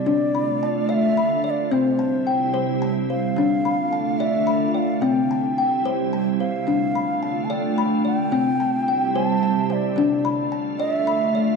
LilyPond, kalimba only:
<<
  \new Staff \with { instrumentName = "Kalimba" } { \time 6/8 \key d \dorian \tempo 4. = 73 << { a''8 b''8 a''4 b''8 d''8~ | d''8 a''8 g''4 a''8 c''8~ | c''8 b''8 a''4 b''8 d''8~ | d''8 a''8 g''4 a''8 c''8~ |
c''8 b''8 a''4 b''8 d''8~ | d''8 a''8 g''4 a''8 c''8~ | c''8 b''8 a''4 b''8 d''8 | } \\ { d'4 r8 d''4 r8 | c'4 r8 c''4 r8 | d'4 r8 d''4 r8 | c'4 r8 c''4 r8 |
d'4 r8 d''4 r8 | c'4 r8 c''4 r8 | d'4 r8 d''4 r8 | } >> }
  \new Staff \with { instrumentName = "Kalimba" } { \clef bass \time 6/8 \key d \dorian d2. | c2. | d2. | c2. |
d2. | c2. | d2. | }
>>